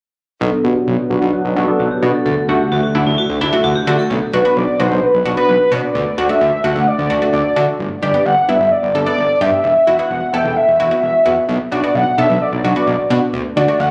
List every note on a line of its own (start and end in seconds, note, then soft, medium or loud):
0.41 0.51 B1 loud
0.41 2.24 F#3 medium
0.41 2.24 B3 medium
0.41 2.24 D4 medium
0.41 0.56 A4 medium
0.64 0.74 B1 loud
0.64 0.76 B3 medium
0.64 0.76 D4 medium
0.64 0.76 F#4 medium
0.87 0.97 B1 loud
0.87 0.95 F#4 medium
0.99 1.13 F#4 medium
1.10 1.20 B1 loud
1.10 1.22 B3 medium
1.10 1.22 D4 medium
1.10 1.22 F#4 medium
1.22 1.32 B1 loud
1.22 1.29 E4 medium
1.33 1.48 F#4 medium
1.45 1.55 B1 medium
1.56 1.66 B1 loud
1.56 1.62 D4 medium
1.56 1.71 E4 medium
1.56 1.62 F#4 medium
1.68 1.80 B3 medium
1.68 1.80 D4 medium
1.68 1.80 A4 medium
1.79 1.89 B1 loud
1.79 1.87 F#4 medium
1.91 2.06 G4 medium
2.02 2.12 B2 loud
2.02 2.15 B3 medium
2.02 2.14 D4 medium
2.02 2.15 F#4 medium
2.14 2.21 A4 medium
2.26 2.35 D2 loud
2.26 4.09 D3 medium
2.26 4.08 A3 medium
2.26 4.08 F#4 medium
2.26 2.40 A4 medium
2.49 2.58 D2 medium
2.49 2.61 A3 medium
2.49 2.61 D4 medium
2.49 2.61 F#4 medium
2.49 2.63 G4 medium
2.72 2.82 D2 loud
2.72 2.79 F#4 medium
2.83 2.98 F#4 medium
2.95 3.05 D2 loud
2.95 3.07 A3 medium
2.95 3.07 D4 medium
2.95 3.07 E4 medium
3.06 3.16 D2 loud
3.06 3.14 E4 medium
3.18 3.33 F#4 medium
3.29 3.39 D2 loud
3.41 3.51 D2 loud
3.41 3.47 D4 medium
3.41 3.56 E4 medium
3.41 3.47 E4 medium
3.53 3.65 A3 medium
3.53 3.65 D4 medium
3.53 3.65 F#4 medium
3.64 3.74 D2 loud
3.64 3.71 F#4 medium
3.76 3.90 G4 medium
3.87 3.97 D3 loud
3.87 3.99 A3 medium
3.87 3.99 D4 medium
3.87 3.99 F#4 loud
3.99 4.06 A4 medium
4.10 4.20 B1 loud
4.33 4.43 B1 loud
4.33 4.39 D4 medium
4.33 4.39 F#4 medium
4.33 4.58 B4 medium
4.45 4.57 B3 medium
4.45 4.57 D4 medium
4.45 4.57 F#4 medium
4.56 4.66 B1 loud
4.56 4.81 D5 medium
4.80 4.89 B1 loud
4.80 4.91 B3 medium
4.80 4.91 D4 medium
4.80 4.91 F#4 medium
4.80 5.04 C5 medium
4.91 5.01 B1 loud
5.03 5.37 B4 medium
5.14 5.24 B1 medium
5.25 5.35 B1 loud
5.25 5.32 D4 medium
5.25 5.32 F#4 medium
5.37 5.49 B3 medium
5.37 5.49 D4 medium
5.37 5.49 F#4 medium
5.37 5.73 B4 medium
5.49 5.58 B1 loud
5.72 5.82 B2 loud
5.72 5.84 B3 medium
5.72 5.84 D4 medium
5.72 5.84 F#4 medium
5.72 6.31 D5 loud
5.95 6.05 D2 loud
6.18 6.28 D2 loud
6.18 6.24 D4 medium
6.18 6.24 F#4 medium
6.29 6.41 A3 medium
6.29 6.41 D4 medium
6.29 6.41 F#4 medium
6.29 6.66 E5 loud
6.41 6.51 D2 loud
6.64 6.74 D2 loud
6.64 6.76 A3 medium
6.64 6.76 D4 medium
6.64 6.76 F#4 medium
6.64 6.88 F#5 loud
6.75 6.85 D2 loud
6.87 7.33 D5 loud
6.99 7.08 D2 loud
7.10 7.20 D2 loud
7.10 7.16 D4 medium
7.10 7.16 F#4 medium
7.22 7.34 A3 medium
7.22 7.34 D4 medium
7.22 7.34 F#4 medium
7.33 7.43 D2 loud
7.33 7.66 D5 medium
7.56 7.66 D3 loud
7.56 7.68 A3 medium
7.56 7.68 D4 medium
7.56 7.68 F#4 medium
7.79 7.89 G1 loud
8.02 8.12 G1 loud
8.02 8.08 D4 medium
8.02 8.08 G4 medium
8.02 8.27 D5 medium
8.14 8.26 B3 medium
8.14 8.26 D4 medium
8.14 8.26 G4 medium
8.25 8.35 G1 loud
8.25 8.50 F#5 medium
8.48 8.58 G1 loud
8.48 8.61 B3 medium
8.48 8.61 D4 medium
8.48 8.61 E4 medium
8.48 8.73 E5 medium
8.60 8.70 G1 loud
8.71 9.06 D5 medium
8.83 8.93 G1 loud
8.95 9.05 G1 loud
8.95 9.01 D4 medium
8.95 9.01 A4 medium
9.06 9.18 B3 medium
9.06 9.18 D4 medium
9.06 9.18 A4 medium
9.06 9.39 D5 medium
9.18 9.28 G1 loud
9.41 9.51 G2 loud
9.41 9.53 B3 medium
9.41 9.53 D4 medium
9.41 9.53 G4 medium
9.41 10.00 E5 loud
9.64 9.74 E1 loud
9.87 9.97 E1 loud
9.87 9.93 E4 medium
9.87 9.93 F#4 medium
9.99 10.11 B3 medium
9.99 10.11 E4 medium
9.99 10.11 F#4 medium
9.99 10.35 F#5 loud
10.10 10.20 E1 loud
10.33 10.43 E1 loud
10.33 10.45 B3 medium
10.33 10.45 E4 medium
10.33 10.45 A4 medium
10.33 10.58 G5 loud
10.45 10.54 E1 loud
10.57 11.02 E5 loud
10.68 10.78 E1 medium
10.79 10.89 E1 loud
10.79 10.86 E4 medium
10.79 10.86 F#4 medium
10.91 11.03 B3 medium
10.91 11.03 E4 medium
10.91 11.03 F#4 medium
11.02 11.12 E1 medium
11.02 11.35 E5 medium
11.26 11.35 E2 medium
11.26 11.38 B3 medium
11.26 11.37 E4 medium
11.26 11.38 F#4 medium
11.49 11.58 B1 loud
11.72 11.81 B1 loud
11.72 11.78 D4 medium
11.72 11.78 F#4 medium
11.72 11.97 D5 medium
11.84 11.95 B3 medium
11.84 11.95 D4 medium
11.84 11.95 F#4 medium
11.95 12.05 B1 loud
11.95 12.18 F#5 loud
12.18 12.28 B1 loud
12.18 12.30 B3 medium
12.18 12.30 D4 medium
12.18 12.30 A4 medium
12.18 12.43 E5 loud
12.29 12.39 B1 loud
12.42 12.75 D5 medium
12.52 12.62 B1 medium
12.64 12.74 B1 loud
12.64 12.70 D4 medium
12.64 12.70 F#4 medium
12.76 12.88 B3 medium
12.76 12.88 D4 medium
12.76 12.88 F#4 medium
12.76 13.08 D5 medium
12.87 12.97 B1 loud
13.10 13.20 B2 loud
13.10 13.22 B3 medium
13.10 13.22 D4 medium
13.10 13.22 F#4 medium
13.33 13.43 D2 loud
13.56 13.66 D2 loud
13.56 13.63 D4 medium
13.56 13.63 F#4 medium
13.56 13.81 D5 medium
13.68 13.80 A3 medium
13.68 13.80 D4 medium
13.68 13.80 F#4 medium
13.80 13.89 D2 loud
13.80 13.91 F#5 loud